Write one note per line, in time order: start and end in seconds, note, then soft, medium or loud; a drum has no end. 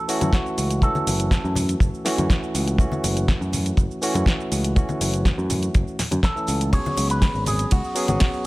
0.00 0.35 A4 loud
0.08 0.79 E3 medium
0.08 0.80 A3 medium
0.08 0.80 C#4 medium
0.08 0.80 F#4 loud
0.08 open hi-hat loud
0.08 maracas loud
0.08 shaker medium
0.21 0.29 F#2 medium
0.21 closed hi-hat medium
0.21 muted conga medium
0.21 high conga medium
0.21 maracas soft
0.21 shaker soft
0.33 0.84 F#4 medium
0.33 kick loud
0.33 snare loud
0.33 closed hi-hat medium
0.33 maracas soft
0.33 shaker soft
0.46 shaker soft
0.58 0.87 C#2 medium
0.58 open hi-hat medium
0.58 maracas loud
0.58 shaker medium
0.70 closed hi-hat medium
0.70 shaker soft
0.70 maracas soft
0.82 2.02 E3 medium
0.82 2.03 A3 medium
0.82 2.03 C#4 medium
0.82 2.03 F#4 medium
0.82 1.53 A4 medium
0.82 kick loud
0.82 closed hi-hat medium
0.82 maracas soft
0.82 shaker soft
0.95 high conga loud
0.95 maracas soft
0.95 shaker soft
1.07 1.37 F#1 loud
1.07 open hi-hat loud
1.07 muted conga medium
1.07 maracas medium
1.07 shaker medium
1.20 closed hi-hat medium
1.20 shaker soft
1.20 maracas soft
1.31 kick loud
1.31 snare loud
1.31 closed hi-hat medium
1.31 shaker soft
1.31 maracas medium
1.44 1.74 F#2 loud
1.44 shaker soft
1.55 open hi-hat medium
1.55 high conga medium
1.55 low conga medium
1.55 maracas medium
1.55 shaker medium
1.68 closed hi-hat medium
1.68 maracas soft
1.68 shaker soft
1.80 1.88 F#1 medium
1.80 kick loud
1.80 closed hi-hat medium
1.80 maracas medium
1.80 shaker soft
1.94 shaker soft
2.04 2.76 E3 medium
2.04 2.76 A3 medium
2.04 2.77 C#4 medium
2.04 2.77 F#4 loud
2.04 snare medium
2.04 open hi-hat loud
2.04 maracas loud
2.04 shaker medium
2.17 2.26 F#2 medium
2.17 closed hi-hat medium
2.17 high conga medium
2.17 maracas soft
2.17 shaker soft
2.29 kick loud
2.29 snare loud
2.29 closed hi-hat medium
2.29 maracas soft
2.29 shaker soft
2.43 shaker soft
2.55 2.84 C#2 medium
2.55 open hi-hat loud
2.55 maracas medium
2.55 shaker medium
2.68 closed hi-hat medium
2.68 shaker soft
2.68 maracas soft
2.78 3.99 E3 medium
2.78 3.99 A3 medium
2.78 4.00 C#4 medium
2.78 4.00 F#4 medium
2.78 kick loud
2.78 closed hi-hat medium
2.78 maracas soft
2.78 shaker soft
2.92 high conga medium
2.92 maracas soft
2.92 shaker soft
3.04 3.33 F#1 loud
3.04 open hi-hat loud
3.04 muted conga medium
3.04 maracas medium
3.04 shaker medium
3.17 closed hi-hat medium
3.17 maracas soft
3.17 shaker soft
3.28 kick loud
3.28 snare loud
3.28 closed hi-hat soft
3.28 maracas soft
3.28 shaker soft
3.41 3.70 F#2 loud
3.41 shaker soft
3.53 open hi-hat loud
3.53 high conga medium
3.53 low conga medium
3.53 maracas medium
3.53 shaker medium
3.66 closed hi-hat medium
3.66 maracas soft
3.66 shaker soft
3.77 3.85 F#1 medium
3.77 kick loud
3.77 closed hi-hat medium
3.77 maracas medium
3.77 shaker soft
3.91 shaker soft
4.02 4.73 E3 medium
4.02 4.73 A3 medium
4.02 4.73 C#4 medium
4.02 4.74 F#4 loud
4.02 open hi-hat loud
4.02 maracas medium
4.02 shaker medium
4.14 4.22 F#2 medium
4.14 closed hi-hat medium
4.14 muted conga medium
4.14 high conga loud
4.14 maracas soft
4.14 shaker soft
4.26 kick loud
4.26 snare loud
4.26 closed hi-hat medium
4.26 maracas soft
4.26 shaker soft
4.40 shaker soft
4.52 4.81 C#2 medium
4.52 open hi-hat medium
4.52 maracas medium
4.52 shaker medium
4.64 closed hi-hat medium
4.64 maracas soft
4.64 shaker soft
4.75 5.96 E3 medium
4.75 5.96 A3 medium
4.75 5.96 C#4 medium
4.75 5.97 F#4 medium
4.75 kick loud
4.75 closed hi-hat medium
4.75 maracas soft
4.75 shaker soft
4.89 high conga medium
4.89 maracas soft
4.89 shaker soft
5.01 5.30 F#1 loud
5.01 open hi-hat loud
5.01 muted conga medium
5.01 maracas medium
5.01 shaker medium
5.14 closed hi-hat medium
5.14 maracas soft
5.14 shaker soft
5.25 kick loud
5.25 snare loud
5.25 closed hi-hat soft
5.25 maracas medium
5.25 shaker soft
5.38 5.67 F#2 loud
5.38 shaker soft
5.50 open hi-hat medium
5.50 high conga medium
5.50 low conga loud
5.50 maracas medium
5.50 shaker medium
5.62 closed hi-hat medium
5.62 maracas soft
5.62 shaker soft
5.74 5.82 F#1 medium
5.74 kick loud
5.74 closed hi-hat soft
5.74 shaker soft
5.74 maracas soft
5.88 shaker soft
5.99 snare medium
5.99 open hi-hat loud
5.99 low conga medium
5.99 maracas medium
5.99 shaker medium
6.11 6.19 F#2 medium
6.11 closed hi-hat medium
6.11 muted conga medium
6.11 high conga medium
6.11 maracas soft
6.11 shaker soft
6.23 6.73 A4 loud
6.23 kick loud
6.23 snare loud
6.23 closed hi-hat medium
6.23 shaker soft
6.23 maracas soft
6.36 6.70 E3 medium
6.36 6.70 A3 medium
6.36 6.70 C#4 medium
6.36 6.70 A4 medium
6.36 shaker soft
6.36 maracas soft
6.47 6.78 C#2 medium
6.47 open hi-hat loud
6.47 maracas medium
6.47 shaker medium
6.61 closed hi-hat medium
6.61 maracas soft
6.61 shaker soft
6.72 7.93 F#3 medium
6.72 7.93 B3 medium
6.72 7.93 C#4 medium
6.72 7.94 G#4 medium
6.72 7.11 C#5 loud
6.72 kick loud
6.72 closed hi-hat medium
6.72 ride medium
6.72 maracas medium
6.72 shaker soft
6.85 high conga loud
6.85 maracas soft
6.85 shaker soft
6.97 7.27 C#2 medium
6.97 open hi-hat loud
6.97 muted conga medium
6.97 maracas loud
6.97 shaker medium
7.10 7.47 B4 loud
7.10 closed hi-hat medium
7.10 shaker soft
7.10 maracas soft
7.22 kick loud
7.22 snare loud
7.22 closed hi-hat medium
7.22 ride medium
7.22 shaker soft
7.22 maracas medium
7.35 7.64 G#1 medium
7.35 shaker soft
7.46 7.72 G#4 medium
7.46 open hi-hat medium
7.46 high conga medium
7.46 low conga medium
7.46 maracas medium
7.46 shaker medium
7.59 closed hi-hat medium
7.59 maracas soft
7.59 shaker soft
7.71 7.79 C#2 medium
7.71 8.08 F#4 loud
7.71 kick loud
7.71 closed hi-hat medium
7.71 ride medium
7.71 maracas medium
7.71 shaker soft
7.84 shaker soft
7.95 8.46 F#3 medium
7.95 8.46 B3 medium
7.95 8.46 C#4 medium
7.95 8.46 G#4 loud
7.95 open hi-hat loud
7.95 shaker medium
7.95 maracas medium
8.08 8.16 G#1 medium
8.08 8.46 F#4 medium
8.08 closed hi-hat medium
8.08 muted conga medium
8.08 high conga loud
8.08 maracas soft
8.08 shaker soft
8.20 kick loud
8.20 snare loud
8.20 closed hi-hat medium
8.20 ride medium
8.20 maracas medium
8.20 shaker soft
8.33 shaker soft